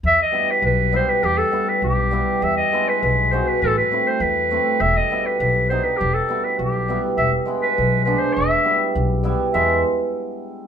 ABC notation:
X:1
M:2/4
L:1/16
Q:1/4=101
K:Em
V:1 name="Clarinet"
e ^d2 B B2 c B | G A2 B G4 | e ^d2 B B2 c B | A B2 c B4 |
e ^d2 B B2 c B | G A2 B G4 | e z2 B3 B c | e4 z4 |
e2 z6 |]
V:2 name="Hammered dulcimer"
z2 [G,B,E] z3 [G,B,E] z | z2 [G,B,E] z3 [G,B,E] z | z2 [^G,B,E] z3 [G,B,F] z | z2 [A,CE] z3 [A,CE] z |
z2 [G,B,E] z3 [G,B,^D] z | z2 [G,B,E] z3 [G,B,E] z | z2 [^G,B,E] z3 [G,B,D] z | z2 [G,B,E] z3 [G,B,E] z |
[^G,B,E]2 z6 |]
V:3 name="Upright bass" clef=bass
E,,2 z2 B,,,4 | E,,2 z2 B,,,4 | E,,2 z2 B,,,4 | A,,,2 z2 E,,4 |
E,,,2 z2 B,,,4 | E,,,2 z2 B,,,4 | E,,,2 z2 B,,,4 | E,,,2 z2 B,,,4 |
E,,2 z6 |]